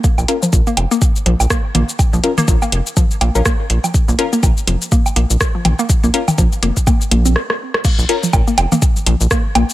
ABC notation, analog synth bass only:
X:1
M:4/4
L:1/16
Q:"Swing 16ths" 1/4=123
K:Bbm
V:1 name="Analog synth bass" clef=bass
z B,,, z2 B,,, z F,,, z3 B,,, B,,, z2 B,,, z | z B,,, z2 B,,, z F,,, z3 B,,, B,,, z2 B,,, z | z B,,, z2 B,,, z F,,, z3 B,,, B,,, z2 B,,, z | z B,,, z2 B,,, z F,,, z3 B,,,2 z4 |
z B,,, z2 B,,, z F,,, z3 B,,, B,,, z2 B,,, z |]